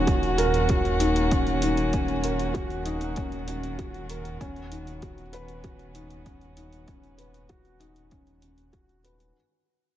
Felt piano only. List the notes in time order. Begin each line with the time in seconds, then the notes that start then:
Already playing: C#4 D#4
0.07 F#4
0.38 A#4
0.70 F#4
1.00 D#4
1.31 C#4
1.63 D#4
1.93 C#4
2.23 A#4
2.54 F#4
2.85 D#4
3.16 C#4
3.48 C#4
3.79 F#4
4.10 A#4
4.41 C#4
4.71 D#4
5.02 F#4
5.33 B4
5.64 F#4
5.95 D#4
6.26 C#4
6.57 D#4
6.87 C#4
7.18 B4
7.49 F#4
7.80 D#4
8.11 C#4
8.42 C#4
8.73 F#4
9.04 B4